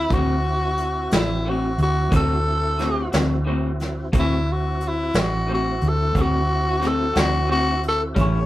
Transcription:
0.00 0.15 E4 medium
0.09 1.07 D2 medium
0.09 0.31 D3 medium
0.09 0.31 A3 medium
0.09 4.09 C4 medium
0.09 4.09 E4 medium
0.09 4.09 F#4 medium
0.09 kick loud
0.09 closed hi-hat medium
0.13 0.32 C4 medium
0.13 0.32 F#4 medium
0.13 1.13 F#4 medium
0.78 closed hi-hat medium
1.11 1.75 A1 medium
1.11 1.51 E4 medium
1.11 snare medium
1.11 closed hi-hat medium
1.45 1.65 D3 soft
1.45 1.66 A3 soft
1.45 1.66 C4 medium
1.45 1.67 F#4 medium
1.45 1.81 F#4 medium
1.78 2.09 D2 medium
1.78 closed hi-hat medium
1.83 2.12 F#4 medium
2.11 3.09 D2 medium
2.11 2.31 D3 medium
2.11 2.32 A3 medium
2.11 2.32 C4 medium
2.11 2.33 F#4 medium
2.11 kick loud
2.11 closed hi-hat medium
2.16 3.11 A4 medium
2.78 2.99 D3 soft
2.78 3.00 A3 medium
2.78 3.00 C4 medium
2.78 3.00 F#4 medium
2.78 snare soft
2.78 closed hi-hat medium
3.12 4.10 D2 medium
3.12 3.34 A3 soft
3.12 3.33 C4 soft
3.12 3.33 F#4 medium
3.12 snare medium
3.12 closed hi-hat medium
3.45 3.66 D3 medium
3.45 3.67 A3 medium
3.45 3.67 C4 medium
3.45 3.67 F#4 medium
3.80 snare soft
3.80 closed hi-hat medium
4.12 5.10 D2 loud
4.12 4.33 D3 medium
4.12 4.34 A3 medium
4.12 4.34 C4 medium
4.12 8.14 C4 medium
4.12 8.13 E4 medium
4.12 8.14 F#4 medium
4.12 4.34 F#4 medium
4.12 kick loud
4.12 closed hi-hat medium
4.19 4.54 E4 medium
4.52 4.90 F#4 medium
4.81 closed hi-hat medium
4.88 5.21 E4 medium
5.14 5.78 A1 medium
5.14 snare loud
5.14 closed hi-hat medium
5.20 5.50 F#4 medium
5.47 5.68 D3 soft
5.47 5.68 A3 medium
5.47 5.69 C4 soft
5.47 5.69 F#4 medium
5.54 5.90 F#4 medium
5.81 6.13 D2 medium
5.81 closed hi-hat soft
5.88 6.23 A4 medium
6.15 7.12 D2 loud
6.15 6.35 D3 medium
6.15 6.36 A3 medium
6.15 6.36 C4 medium
6.15 6.37 F#4 medium
6.15 kick loud
6.15 closed hi-hat medium
6.21 6.88 F#4 medium
6.79 7.01 D3 medium
6.79 7.02 A3 soft
6.79 7.02 C4 medium
6.79 7.03 F#4 medium
6.79 snare soft
6.79 closed hi-hat medium
6.87 7.18 A4 medium
7.14 8.13 D2 medium
7.14 7.37 A3 soft
7.14 7.36 C4 soft
7.14 7.35 F#4 medium
7.14 snare medium
7.14 closed hi-hat medium
7.19 7.49 F#4 medium
7.47 7.69 D3 soft
7.47 7.70 A3 soft
7.47 7.70 C4 soft
7.47 7.71 F#4 medium
7.52 7.82 F#4 medium
7.83 closed hi-hat medium
7.88 8.03 A4 medium
8.15 8.46 A1 medium
8.15 8.36 A2 medium
8.15 8.36 G3 medium
8.15 8.46 A3 medium
8.15 8.37 C#4 medium
8.15 8.46 C#4 medium
8.15 8.37 E4 medium
8.15 8.46 G4 medium
8.15 kick loud
8.15 closed hi-hat medium
8.22 8.46 C#5 medium

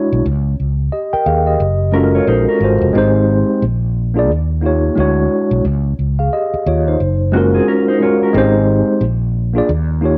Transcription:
0.00 0.13 G#3 medium
0.00 0.14 D4 medium
0.00 0.14 E4 medium
0.00 0.15 F#4 medium
0.00 0.16 C#5 loud
0.13 0.24 B1 medium
0.26 0.55 C#2 medium
0.60 0.89 C#2 medium
0.92 1.12 G4 soft
0.92 1.12 D#5 medium
1.13 1.26 A#4 medium
1.13 1.26 G5 medium
1.13 muted fretless electric bass stroke soft
1.26 1.55 D#2 medium
1.26 1.46 G#4 medium
1.26 1.45 F5 medium
1.47 1.79 G4 soft
1.47 1.79 D#5 medium
1.60 2.18 F#1 medium
1.92 2.47 G#3 medium
1.92 2.47 C#4 medium
1.92 2.13 C#4 medium
1.92 2.48 F4 medium
1.92 2.49 F#4 medium
1.92 2.13 A#4 medium
1.97 2.03 A4 medium
2.04 2.53 A#4 medium
2.15 2.28 F4 medium
2.15 2.27 C#5 medium
2.27 2.45 A#1 medium
2.27 2.47 D#4 medium
2.27 2.47 C5 medium
2.49 2.93 C#4 medium
2.49 2.93 A#4 medium
2.59 2.78 G#1 medium
2.59 2.87 G#3 medium
2.59 2.88 C#4 medium
2.59 2.89 F4 medium
2.63 2.89 F#4 medium
2.63 2.90 C5 medium
2.81 2.93 F1 medium
2.93 3.42 G#1 loud
2.93 3.61 G#3 medium
2.93 3.62 C4 medium
2.93 3.62 D#4 medium
2.93 3.63 G4 medium
2.98 3.64 C5 loud
3.62 4.30 A#1 medium
4.14 4.28 A#3 medium
4.14 4.29 D4 medium
4.14 4.30 F4 medium
4.14 4.30 G#4 medium
4.19 4.31 D5 medium
4.30 4.88 D#2 medium
4.61 4.96 A#3 medium
4.61 4.96 D#4 medium
4.61 4.97 F4 medium
4.61 4.98 G4 medium
4.66 4.98 C#5 medium
4.95 5.26 D2 medium
4.95 5.53 G#3 medium
4.95 5.53 D4 medium
4.95 5.54 E4 medium
4.95 5.55 F#4 medium
5.00 5.55 C#5 medium
5.51 5.63 B1 medium
5.65 5.94 C#2 medium
5.99 6.28 C#2 medium
6.19 6.32 G#4 soft
6.19 6.31 F5 medium
6.33 6.65 G4 medium
6.33 6.64 D#5 medium
6.54 muted fretless electric bass stroke medium
6.66 6.95 D#2 medium
6.66 6.86 F4 medium
6.66 6.85 C#5 medium
6.88 7.19 D#4 soft
6.88 7.19 C5 medium
7.00 7.58 F#1 medium
7.32 7.87 G#3 medium
7.32 7.53 A#3 medium
7.32 7.88 C#4 medium
7.32 7.88 F4 medium
7.32 7.52 F#4 medium
7.32 7.88 F#4 medium
7.37 7.89 A#4 medium
7.54 7.67 C4 medium
7.54 7.66 G#4 medium
7.68 7.87 C#4 medium
7.68 7.86 A#4 medium
7.88 8.01 D#4 medium
7.88 8.00 C5 medium
8.00 8.27 G#3 medium
8.00 8.28 C#4 medium
8.00 8.28 F4 medium
8.00 8.21 F4 medium
8.00 8.21 C#5 medium
8.04 8.29 F#4 medium
8.04 8.30 A#4 medium
8.23 8.54 C#4 soft
8.23 8.54 A#4 medium
8.33 8.81 G#1 loud
8.33 9.01 G#3 loud
8.33 9.01 C4 medium
8.33 9.02 D#4 loud
8.33 9.03 G4 medium
8.38 9.03 C5 loud
9.01 9.60 A#1 medium
9.54 9.68 A#3 medium
9.54 9.69 D4 medium
9.54 9.69 F4 medium
9.54 9.69 G#4 medium
9.58 9.70 D5 medium
9.69 10.18 D#2 medium
10.01 10.18 A#3 medium
10.01 10.18 D#4 medium
10.01 10.18 F4 medium
10.01 10.18 G4 medium
10.06 10.18 C#5 medium

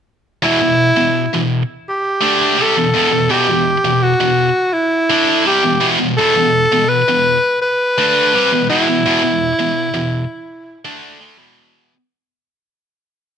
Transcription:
0.42 0.59 E2 loud
0.42 0.59 B2 loud
0.42 1.47 E4 loud
0.62 0.90 E2 medium
0.62 0.90 B2 medium
0.97 1.25 E2 medium
0.97 1.25 B2 medium
1.33 1.61 E2 medium
1.33 1.61 B2 medium
1.89 2.63 G4 medium
2.21 2.56 D3 medium
2.21 2.56 A3 medium
2.21 2.56 D4 loud
2.57 2.74 C3 medium
2.57 2.74 G3 loud
2.62 3.32 A4 medium
2.77 2.93 E2 medium
2.77 2.93 B2 medium
2.94 3.10 E2 loud
2.94 3.10 B2 loud
3.11 3.28 E2 medium
3.11 3.29 B2 medium
3.29 3.46 E2 medium
3.29 3.46 B2 loud
3.29 4.05 G4 loud
3.48 3.77 E2 medium
3.48 3.76 B2 medium
3.84 4.12 E2 medium
3.84 4.13 B2 medium
4.03 4.75 F#4 loud
4.20 4.48 E2 medium
4.20 4.49 B2 medium
4.73 5.45 E4 medium
5.10 5.44 D3 loud
5.10 5.45 A3 medium
5.10 5.45 D4 loud
5.45 5.62 C3 loud
5.45 5.62 G3 loud
5.45 5.88 G4 loud
5.63 5.80 E2 medium
5.63 5.81 B2 medium
5.81 5.98 E2 loud
5.81 5.98 B2 loud
5.99 6.17 E2 medium
5.99 6.17 B2 medium
6.17 6.35 E2 loud
6.17 6.35 B2 loud
6.17 6.90 A4 loud
6.36 6.64 E2 medium
6.36 6.64 B2 medium
6.72 7.00 E2 medium
6.72 7.00 B2 medium
6.89 7.61 B4 loud
7.08 7.36 E2 medium
7.08 7.37 B2 medium
7.62 8.65 B4 loud
7.98 8.32 D3 medium
7.98 8.32 A3 medium
7.98 8.33 D4 loud
8.34 8.50 C3 medium
8.34 8.51 G3 loud
8.52 8.69 E2 medium
8.52 8.69 B2 medium
8.69 8.86 E2 loud
8.69 8.87 B2 loud
8.69 10.81 E4 loud
8.88 9.04 E2 medium
8.88 9.05 B2 medium
9.06 9.22 E2 loud
9.06 9.23 B2 loud
9.23 9.52 E2 medium
9.23 9.52 B2 medium
9.59 9.88 E2 medium
9.59 9.88 B2 medium
9.94 10.23 E2 medium
9.94 10.23 B2 medium
10.85 11.19 D3 loud
10.85 11.19 A3 medium
10.85 11.20 D4 medium
11.20 11.38 D3 medium
11.20 11.38 A3 loud
11.38 11.91 E2 medium
11.38 11.92 B2 loud
11.38 11.92 E3 medium

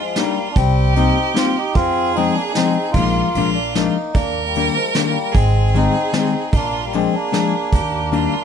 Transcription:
0.00 0.17 F3 medium
0.00 0.18 G#3 medium
0.00 0.57 F4 medium
0.16 0.48 G3 medium
0.16 0.38 G3 medium
0.16 0.38 A#3 medium
0.16 0.52 A#3 medium
0.16 0.38 D4 soft
0.16 0.38 D#4 medium
0.16 snare medium
0.16 ride soft
0.51 0.57 D4 medium
0.55 1.08 C2 loud
0.55 0.94 G3 medium
0.55 0.94 C4 loud
0.55 1.76 G4 medium
0.55 kick medium
0.55 ride soft
0.95 1.17 G3 medium
0.95 1.17 A#3 medium
0.95 1.33 C4 medium
0.95 1.18 C4 medium
0.95 1.37 D#4 loud
0.95 1.18 D#4 medium
0.95 ride soft
1.34 1.56 G3 medium
1.34 1.56 A#3 medium
1.34 1.56 C4 medium
1.34 1.57 D#4 medium
1.34 1.58 F4 medium
1.34 snare medium
1.34 ride soft
1.56 1.75 D#4 medium
1.56 1.76 G4 medium
1.74 2.27 F2 medium
1.74 2.13 C4 medium
1.74 2.16 F4 loud
1.74 2.93 G#4 medium
1.74 kick medium
1.74 ride medium
2.14 2.37 F3 medium
2.14 2.37 G#3 medium
2.14 2.35 C4 medium
2.14 2.37 C4 medium
2.14 2.36 D#4 loud
2.14 ride soft
2.18 2.37 D#4 medium
2.34 2.53 A#3 medium
2.34 2.53 D4 medium
2.52 2.91 C4 medium
2.52 2.95 D#4 loud
2.52 snare medium
2.52 ride soft
2.57 2.77 F3 medium
2.57 2.76 G#3 medium
2.57 2.77 C4 medium
2.57 2.77 D#4 medium
2.92 3.21 A#1 medium
2.92 3.50 A#3 medium
2.92 3.50 F4 loud
2.92 3.31 F4 medium
2.92 kick medium
2.92 ride soft
2.96 3.28 F3 medium
2.96 3.28 G#3 medium
2.96 3.28 A#3 medium
2.96 3.28 D#4 medium
3.34 3.87 A#1 medium
3.34 3.57 F3 medium
3.34 3.57 G#3 soft
3.34 3.57 A#3 medium
3.34 3.57 D4 medium
3.34 3.91 F4 medium
3.34 ride soft
3.54 3.74 A#3 medium
3.54 3.75 D4 medium
3.75 3.96 F3 medium
3.75 3.96 G#3 medium
3.75 4.12 A#3 medium
3.75 3.97 A#3 medium
3.75 3.96 D4 medium
3.75 4.16 D#4 medium
3.75 snare medium
3.75 ride soft
4.13 4.67 D#2 medium
4.13 4.43 A#3 medium
4.13 4.46 D4 loud
4.13 5.33 A#4 loud
4.13 kick medium
4.13 ride medium
4.45 4.74 G3 medium
4.45 4.77 A#3 medium
4.55 4.77 D#3 medium
4.55 4.77 G3 soft
4.55 4.77 A#3 medium
4.55 4.77 D4 medium
4.55 ride soft
4.74 4.93 F3 medium
4.74 4.95 G#3 medium
4.94 5.16 D#3 medium
4.94 5.02 G3 medium
4.94 5.16 G3 medium
4.94 5.02 A#3 medium
4.94 5.16 A#3 medium
4.94 5.16 D4 medium
4.94 snare medium
4.94 ride soft
5.00 5.08 G#3 medium
5.08 5.33 G3 medium
5.08 5.35 A#3 medium
5.32 5.86 G#1 medium
5.32 5.71 G#3 medium
5.32 5.75 C4 medium
5.32 6.52 G#4 medium
5.32 kick medium
5.32 ride soft
5.74 5.95 D#3 medium
5.74 5.95 G3 soft
5.74 5.96 G#3 medium
5.74 6.12 C4 medium
5.74 5.96 C4 medium
5.74 6.13 D#4 loud
5.74 ride soft
6.13 6.34 D#3 medium
6.13 6.34 G3 soft
6.13 6.34 G#3 medium
6.13 6.51 C4 medium
6.13 6.34 C4 medium
6.13 6.55 D#4 medium
6.13 snare medium
6.13 ride soft
6.53 7.05 A#1 medium
6.53 6.82 A#3 medium
6.53 6.85 D4 loud
6.53 6.94 F4 medium
6.53 kick medium
6.53 ride medium
6.85 6.93 G3 medium
6.85 6.94 A#3 medium
6.93 7.15 F3 medium
6.93 7.13 G#3 medium
6.93 7.15 G#3 medium
6.93 7.15 A#3 medium
6.93 7.15 C4 medium
6.93 7.15 D4 medium
6.93 7.76 G#4 medium
6.93 ride soft
7.13 8.44 A#3 medium
7.13 8.44 D4 medium
7.32 7.54 F3 medium
7.32 7.53 G#3 medium
7.32 7.54 A#3 medium
7.32 7.54 D4 medium
7.32 snare medium
7.32 ride soft
7.72 8.26 D#2 medium
7.72 8.12 G4 medium
7.72 kick medium
7.72 ride soft
8.12 8.34 D#3 medium
8.12 8.34 G3 medium
8.12 8.34 A#3 medium
8.12 8.34 D4 medium
8.12 8.44 F4 medium
8.12 ride soft

